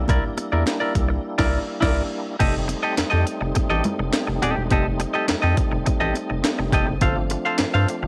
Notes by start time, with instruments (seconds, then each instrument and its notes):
Already playing: tonewheel organ G3 A#3 D4 E4
0.08 analog synth bass C2, clean electric guitar E4 A#4 D5, kick, closed hi-hat, muted conga
0.37 muted clean electric guitar stroke, closed hi-hat, muted conga
0.52 analog synth bass E2, clean electric guitar E4 A#4 D5
0.66 muted clean electric guitar stroke, snare, clap, closed hi-hat, high conga
0.80 clean electric guitar E4 A#4 D5
0.95 analog synth bass C2, kick, closed hi-hat
1.09 muted clean electric guitar stroke
1.38 analog synth bass C2, clean electric guitar E4 A#4 D5, kick, snare, crash
1.81 analog synth bass C2, clean electric guitar E4 A#4 D5, kick, snare, crash
2.39 analog synth bass F1, tonewheel organ G3 A3 C4 D#4, clean electric guitar G4 A4 D#5, kick, closed hi-hat, crash, muted conga
2.68 muted clean electric guitar stroke, closed hi-hat, muted conga
2.83 clean electric guitar G4 A4 D#5
2.97 analog synth bass F2, muted clean electric guitar stroke, snare, clap, closed hi-hat, high conga
3.10 analog synth bass F2, clean electric guitar G4 A4 D#5
3.26 muted clean electric guitar stroke, closed hi-hat
3.41 analog synth bass F1, muted clean electric guitar stroke
3.55 muted clean electric guitar stroke, kick, closed hi-hat, muted conga
3.70 analog synth bass A1, clean electric guitar G4 A4 D#5
3.84 closed hi-hat, low conga
3.99 analog synth bass F1, muted clean electric guitar stroke
4.13 snare, clap, closed hi-hat, high conga
4.27 analog synth bass F1, muted clean electric guitar stroke
4.42 analog synth bass D#1, clean electric guitar G4 A4 D#5, closed hi-hat, high conga
4.56 analog synth bass E1, muted clean electric guitar stroke
4.71 analog synth bass F1, clean electric guitar G4 A4 D#5, kick, closed hi-hat, muted conga
5.00 muted clean electric guitar stroke, closed hi-hat, muted conga
5.14 clean electric guitar G4 A4 D#5
5.28 analog synth bass F2, muted clean electric guitar stroke, snare, clap, closed hi-hat, high conga
5.42 analog synth bass F2, clean electric guitar G4 A4 D#5
5.57 muted clean electric guitar stroke, kick, closed hi-hat
5.72 analog synth bass F1, muted clean electric guitar stroke
5.86 muted clean electric guitar stroke, kick, closed hi-hat, muted conga
6.00 analog synth bass A1, clean electric guitar G4 A4 D#5
6.15 muted clean electric guitar stroke, closed hi-hat, muted conga
6.30 analog synth bass F1, muted clean electric guitar stroke
6.44 snare, clap, closed hi-hat, high conga
6.59 analog synth bass F1, muted clean electric guitar stroke
6.72 analog synth bass F1, clean electric guitar G4 A4 D#5, kick, closed hi-hat, high conga
6.87 analog synth bass F#1, muted clean electric guitar stroke
7.01 analog synth bass G1, tonewheel organ F3 A3 D4, clean electric guitar A4 C5 F5, kick, closed hi-hat, muted conga
7.30 muted clean electric guitar stroke, closed hi-hat, muted conga
7.45 clean electric guitar A4 C5 F5
7.58 analog synth bass G2, snare, clap, closed hi-hat, high conga
7.74 analog synth bass G2, clean electric guitar A4 C5 F5
7.88 muted clean electric guitar stroke, closed hi-hat
8.03 analog synth bass G1, muted clean electric guitar stroke